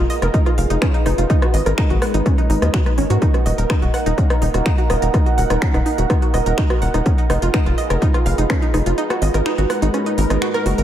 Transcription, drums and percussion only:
0.10 open hi-hat
0.22 cross-stick, closed hi-hat
0.34 kick, closed hi-hat
0.46 cross-stick, closed hi-hat
0.58 open hi-hat
0.70 closed hi-hat
0.82 finger snap, kick, cross-stick, closed hi-hat
0.94 closed hi-hat
1.06 cross-stick, open hi-hat
1.18 closed hi-hat
1.30 kick, closed hi-hat
1.42 cross-stick, closed hi-hat
1.54 open hi-hat
1.66 cross-stick, closed hi-hat
1.78 finger snap, kick, closed hi-hat
1.90 closed hi-hat
2.02 cross-stick, open hi-hat
2.14 closed hi-hat
2.26 kick, cross-stick, closed hi-hat
2.38 closed hi-hat
2.50 open hi-hat
2.62 cross-stick, closed hi-hat
2.74 finger snap, kick, closed hi-hat
2.86 cross-stick, closed hi-hat
2.98 open hi-hat
3.10 closed hi-hat
3.22 kick, closed hi-hat
3.34 cross-stick, closed hi-hat
3.46 open hi-hat
3.58 closed hi-hat
3.70 finger snap, kick, cross-stick, closed hi-hat
3.82 closed hi-hat
3.94 cross-stick, open hi-hat
4.06 closed hi-hat
4.18 kick, closed hi-hat
4.30 cross-stick, closed hi-hat
4.42 open hi-hat
4.54 cross-stick, closed hi-hat
4.66 finger snap, kick, closed hi-hat
4.78 closed hi-hat
4.90 cross-stick, open hi-hat
5.02 closed hi-hat
5.14 kick, cross-stick, closed hi-hat
5.26 closed hi-hat
5.38 open hi-hat
5.50 cross-stick, closed hi-hat
5.62 finger snap, kick, closed hi-hat
5.74 cross-stick, closed hi-hat
5.86 open hi-hat
5.98 closed hi-hat
6.10 kick, cross-stick, closed hi-hat
6.22 closed hi-hat
6.34 cross-stick, open hi-hat
6.46 closed hi-hat
6.58 finger snap, kick, closed hi-hat
6.70 cross-stick, closed hi-hat
6.82 open hi-hat
6.94 cross-stick, closed hi-hat
7.06 kick, closed hi-hat
7.18 closed hi-hat
7.30 cross-stick, open hi-hat
7.42 closed hi-hat
7.54 finger snap, kick, cross-stick, closed hi-hat
7.66 closed hi-hat
7.78 open hi-hat
7.90 cross-stick, closed hi-hat
8.02 kick, closed hi-hat
8.14 cross-stick, closed hi-hat
8.26 open hi-hat
8.38 closed hi-hat
8.50 finger snap, kick, cross-stick, closed hi-hat
8.62 closed hi-hat
8.74 cross-stick, open hi-hat
8.86 closed hi-hat
8.98 closed hi-hat
9.10 cross-stick, closed hi-hat
9.22 open hi-hat
9.34 cross-stick, closed hi-hat
9.46 finger snap, closed hi-hat
9.58 closed hi-hat
9.70 cross-stick, open hi-hat
9.82 closed hi-hat
9.94 cross-stick, closed hi-hat
10.06 closed hi-hat
10.18 open hi-hat
10.30 cross-stick, closed hi-hat
10.42 finger snap, closed hi-hat
10.54 cross-stick, closed hi-hat
10.66 open hi-hat
10.78 closed hi-hat

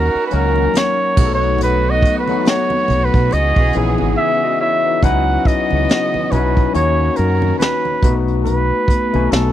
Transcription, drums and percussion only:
0.31 closed hi-hat
0.56 high conga
0.74 snare, closed hi-hat, high conga
1.17 kick, crash, muted conga, low conga
1.43 closed hi-hat
1.58 closed hi-hat, muted conga, low conga
2.02 kick, closed hi-hat, muted conga
2.27 closed hi-hat, high conga
2.46 snare, closed hi-hat, muted conga
2.70 high conga
2.88 closed hi-hat, muted conga, low conga
3.14 kick, closed hi-hat
3.31 closed hi-hat, muted conga
3.56 kick
3.73 closed hi-hat, muted conga
3.98 high conga
5.02 kick, closed hi-hat, muted conga, low conga
5.45 kick, closed hi-hat
5.71 high conga
5.89 snare, closed hi-hat, muted conga
6.14 high conga
6.32 closed hi-hat, muted conga, low conga
6.57 kick, closed hi-hat
6.75 closed hi-hat, muted conga
7.16 closed hi-hat, muted conga
7.42 high conga
7.60 snare, closed hi-hat, high conga
7.85 high conga
8.03 kick, closed hi-hat, muted conga, low conga
8.28 closed hi-hat
8.46 closed hi-hat, muted conga, low conga
8.88 kick, closed hi-hat, muted conga
9.14 closed hi-hat, high conga
9.32 snare, closed hi-hat

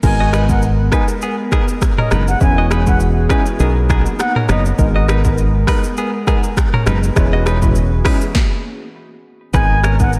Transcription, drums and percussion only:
0.03 kick, crash, shaker
0.33 finger snap, cross-stick, shaker
0.49 kick, shaker
0.62 shaker
0.92 finger snap, kick, cross-stick, shaker
1.08 shaker
1.22 shaker
1.52 finger snap, kick, cross-stick, shaker
1.68 shaker
1.81 finger snap, kick, cross-stick, shaker
1.98 mid tom
2.11 finger snap, cross-stick, shaker
2.28 shaker
2.41 kick, shaker
2.71 finger snap, cross-stick, shaker
2.87 kick, shaker
3.00 shaker
3.29 finger snap, kick, cross-stick, shaker
3.46 shaker
3.60 shaker
3.89 finger snap, kick, cross-stick, shaker
4.06 shaker
4.19 finger snap, cross-stick, shaker
4.36 mid tom
4.49 finger snap, cross-stick, shaker
4.66 shaker
4.78 kick, shaker
5.08 finger snap, cross-stick, shaker
5.24 kick, shaker
5.38 shaker
5.67 finger snap, kick, cross-stick, open hi-hat, shaker
5.84 shaker
5.97 shaker
6.27 finger snap, kick, cross-stick, shaker
6.44 shaker
6.57 finger snap, kick, cross-stick, shaker
6.73 mid tom
6.86 finger snap, cross-stick, shaker
7.03 shaker
7.16 finger snap, kick, cross-stick, shaker
7.46 finger snap, cross-stick, shaker
7.62 kick, mid tom, shaker
7.75 shaker
8.05 finger snap, kick, cross-stick, open hi-hat, shaker
8.21 shaker
8.35 kick, snare
9.54 kick, shaker
9.83 finger snap, cross-stick, shaker
9.99 kick, shaker
10.13 shaker

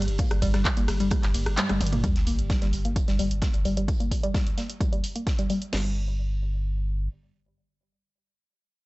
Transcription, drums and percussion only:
0.02 closed hi-hat
0.08 closed hi-hat
0.18 kick, closed hi-hat, open hi-hat, ride
0.31 cross-stick, closed hi-hat
0.42 kick, closed hi-hat, open hi-hat, ride
0.54 cross-stick, snare, closed hi-hat
0.65 kick, clap, closed hi-hat, ride
0.77 closed hi-hat
0.88 cross-stick, snare, open hi-hat, ride
1.00 closed hi-hat
1.11 kick, cross-stick, closed hi-hat, ride
1.23 snare, clap, closed hi-hat
1.34 closed hi-hat, open hi-hat, ride
1.46 cross-stick, closed hi-hat
1.57 clap, closed hi-hat, high tom, ride
1.69 cross-stick, closed hi-hat, high tom
1.81 closed hi-hat, open hi-hat, mid tom, ride
1.86 closed hi-hat
1.93 closed hi-hat, mid tom
2.04 kick, closed hi-hat
2.16 snare, closed hi-hat
2.27 closed hi-hat, open hi-hat
2.39 closed hi-hat
2.50 kick, snare, closed hi-hat
2.61 snare, closed hi-hat
2.73 closed hi-hat, open hi-hat
2.85 closed hi-hat
2.96 kick, closed hi-hat
3.08 snare, closed hi-hat
3.19 closed hi-hat, open hi-hat
3.31 closed hi-hat
3.42 kick, snare, closed hi-hat
3.53 closed hi-hat
3.65 closed hi-hat, open hi-hat
3.77 closed hi-hat
3.88 kick, closed hi-hat, open hi-hat
4.00 closed hi-hat
4.11 kick, closed hi-hat, open hi-hat
4.23 closed hi-hat
4.34 kick, snare, closed hi-hat
4.46 closed hi-hat
4.57 snare, closed hi-hat, open hi-hat
4.70 closed hi-hat
4.81 kick, closed hi-hat
4.93 closed hi-hat
5.04 closed hi-hat, open hi-hat
5.16 closed hi-hat
5.27 kick, snare, closed hi-hat
5.39 closed hi-hat
5.49 closed hi-hat, open hi-hat
5.62 closed hi-hat
5.73 snare, crash

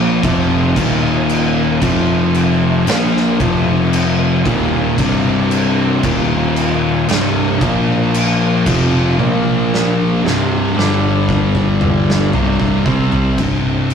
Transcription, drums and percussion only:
0.23 kick, crash
0.76 kick, crash
1.29 crash
1.82 kick, crash
2.34 crash
2.87 snare, crash
3.17 snare
3.40 kick, crash
3.93 crash
4.46 kick, crash
4.98 kick, crash
5.51 crash
6.03 kick, crash
6.56 crash
7.09 snare, crash
7.61 kick, crash
8.14 crash
8.66 kick, crash
9.19 high tom
9.74 snare
10.27 snare
10.79 snare
11.29 kick
11.55 kick
11.81 mid tom
12.10 snare
12.33 floor tom
12.60 kick
12.86 kick
13.12 floor tom
13.38 kick, crash
13.90 crash

